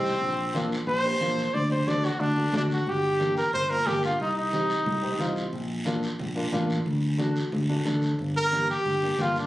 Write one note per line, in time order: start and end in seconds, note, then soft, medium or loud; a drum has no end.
0.00 0.15 C2 medium
0.00 0.12 C4 medium
0.00 0.69 C4 loud
0.00 0.12 D#4 medium
0.00 0.12 G4 medium
0.06 short guiro medium
0.21 0.75 A#1 loud
0.21 high conga soft
0.21 long guiro medium
0.54 0.72 A#3 medium
0.54 0.72 D4 medium
0.54 0.72 F4 medium
0.54 high conga medium
0.54 short guiro medium
0.72 short guiro medium
0.87 1.14 A#1 loud
0.87 1.55 C5 loud
0.87 high conga soft
0.87 long guiro medium
1.04 1.10 A#3 medium
1.04 1.10 D4 medium
1.04 1.11 G4 medium
1.20 1.48 A#1 medium
1.20 1.44 A#3 medium
1.20 1.44 D4 medium
1.20 1.44 F4 medium
1.20 high conga medium
1.20 short guiro medium
1.38 short guiro medium
1.54 2.07 D2 loud
1.54 1.70 D5 medium
1.54 high conga soft
1.54 long guiro medium
1.71 1.90 C5 medium
1.71 low conga medium
1.87 2.05 A3 medium
1.87 2.05 D4 medium
1.87 2.05 F#4 medium
1.87 2.07 D5 medium
1.87 high conga medium
1.87 short guiro medium
2.04 2.22 F#4 medium
2.04 short guiro medium
2.20 2.47 D2 loud
2.20 2.53 D4 loud
2.20 long guiro medium
2.37 2.43 A3 medium
2.37 2.43 D4 medium
2.37 2.43 F#4 medium
2.53 2.80 D2 medium
2.53 2.77 A3 medium
2.53 2.77 D4 medium
2.53 2.63 D4 medium
2.53 2.77 F#4 medium
2.53 high conga medium
2.53 low conga medium
2.53 short guiro medium
2.70 2.90 F#4 medium
2.70 short guiro medium
2.86 3.40 G1 medium
2.86 3.37 G4 medium
2.86 high conga soft
2.86 low conga medium
2.86 long guiro medium
3.20 3.37 A#3 medium
3.20 3.38 D4 medium
3.20 3.38 G4 medium
3.20 high conga medium
3.20 short guiro medium
3.37 3.53 A#4 medium
3.37 short guiro medium
3.53 3.80 G1 medium
3.53 3.71 C5 loud
3.53 high conga soft
3.53 low conga medium
3.53 long guiro medium
3.69 3.76 A#3 medium
3.69 3.76 D4 medium
3.69 3.76 F4 medium
3.69 3.88 A#4 loud
3.86 4.13 G1 medium
3.86 4.10 A#3 medium
3.86 4.10 D4 medium
3.86 4.03 G4 loud
3.86 4.10 A#4 medium
3.86 high conga medium
3.86 low conga medium
3.86 short guiro medium
4.03 4.20 F4 medium
4.03 short guiro medium
4.19 4.73 C2 medium
4.19 4.36 D#4 medium
4.19 high conga soft
4.19 long guiro medium
4.37 5.33 D#4 medium
4.53 4.71 C4 medium
4.53 4.71 D#4 medium
4.53 4.71 G4 medium
4.53 high conga medium
4.53 short guiro medium
4.70 short guiro medium
4.86 5.13 C2 medium
4.86 high conga soft
4.86 low conga medium
4.86 long guiro medium
5.02 5.09 C4 medium
5.02 5.09 D#4 medium
5.02 5.09 G4 medium
5.19 5.46 C2 medium
5.19 5.43 C4 medium
5.19 5.43 D#4 medium
5.19 5.43 F4 loud
5.19 high conga medium
5.19 short guiro medium
5.36 short guiro medium
5.52 6.06 A#1 medium
5.52 high conga soft
5.52 long guiro medium
5.85 6.03 A#3 medium
5.85 6.03 D4 medium
5.85 6.04 F4 loud
5.85 high conga medium
5.85 short guiro medium
6.03 short guiro medium
6.19 6.46 A#1 medium
6.19 high conga soft
6.19 low conga medium
6.19 long guiro medium
6.36 6.42 A#3 medium
6.36 6.42 D4 medium
6.36 6.42 F4 medium
6.52 6.79 A1 medium
6.52 6.76 A#3 medium
6.52 6.76 D4 medium
6.52 6.76 F4 loud
6.52 high conga medium
6.52 low conga medium
6.52 short guiro medium
6.70 short guiro medium
6.86 7.39 D2 medium
6.86 high conga soft
6.86 long guiro medium
7.18 7.36 A3 medium
7.18 7.36 D4 medium
7.18 7.37 F#4 medium
7.18 high conga medium
7.18 short guiro medium
7.36 short guiro medium
7.52 7.79 D2 medium
7.52 high conga soft
7.52 low conga medium
7.52 long guiro medium
7.69 7.75 A3 medium
7.69 7.75 D4 medium
7.69 7.75 F#4 medium
7.85 8.12 D2 medium
7.85 8.09 A3 medium
7.85 8.09 D4 medium
7.85 8.09 A4 medium
7.85 high conga medium
7.85 short guiro medium
8.02 short guiro medium
8.19 8.72 G1 medium
8.19 high conga soft
8.19 long guiro medium
8.37 8.67 A#4 loud
8.51 8.69 A#3 medium
8.51 8.70 D4 medium
8.51 8.70 G4 medium
8.51 high conga medium
8.51 short guiro medium
8.69 9.23 G4 loud
8.69 short guiro medium
8.84 9.11 G1 medium
8.84 high conga soft
8.84 low conga medium
8.84 long guiro medium
9.02 9.08 A#3 medium
9.02 9.08 D4 medium
9.02 9.08 G4 medium
9.18 9.45 G1 medium
9.18 9.42 A#3 medium
9.18 9.42 D4 medium
9.18 9.42 F4 medium
9.18 9.36 F4 medium
9.18 high conga medium
9.18 low conga medium
9.18 short guiro medium
9.36 9.47 D#4 medium
9.36 short guiro medium